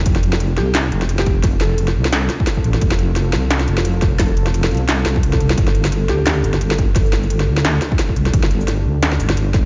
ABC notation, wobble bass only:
X:1
M:4/4
L:1/8
Q:"Swing 16ths" 1/4=174
K:F
V:1 name="Wobble bass" clef=bass
F,,,3 C,,2 F,,,3 | F,,,3 C,,2 z2 A,,, | F,,,3 C,,2 F,,,3 | F,,,3 C,,2 C,,2 C,, |
G,,,3 D,,2 G,,,3 | G,,,3 D,,2 z2 C,, | G,,,3 D,,2 G,,,3 |]